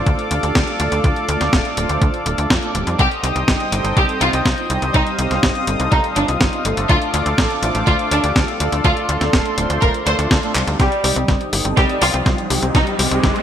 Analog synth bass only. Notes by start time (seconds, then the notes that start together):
0.07 D2
0.31 D2
0.43 D2
0.55 D2
0.80 D2
0.92 D2
1.04 D2
1.29 D2
1.41 D2
1.53 D1
1.77 D1
1.89 D2
2.02 D2
2.26 D1
2.38 D2
2.50 F2
2.75 D1
2.87 F2
2.99 C2
3.23 C2
3.36 C2
3.48 G1
3.72 G1
3.84 G1
3.97 C2
4.21 C2
4.33 C2
4.45 C2
4.70 C2
4.82 C2
4.94 C2
5.19 C2
5.31 C2
5.43 G1
5.67 G1
5.80 C2
5.92 C2
6.16 G1
6.29 C2
6.41 G1
6.65 G1
6.77 G1
6.89 D2
7.14 D2
7.26 D2
7.38 A1
7.62 A1
7.75 A1
7.87 D2
8.11 D2
8.24 D2
8.36 D2
8.60 D2
8.72 D2
8.85 D2
9.09 D2
9.21 D2
9.33 D1
9.58 D1
9.70 D2
9.82 D1
10.06 D2
10.19 D2
10.31 D2
10.55 C2
10.67 D2
10.80 C2
11.04 C2
11.16 C2
11.28 G1
11.53 G1
11.65 G1
11.77 C2
12.02 C2
12.14 C2
12.26 C2
12.50 C2
12.62 C2
12.75 C2
12.99 C2
13.11 C2
13.24 G1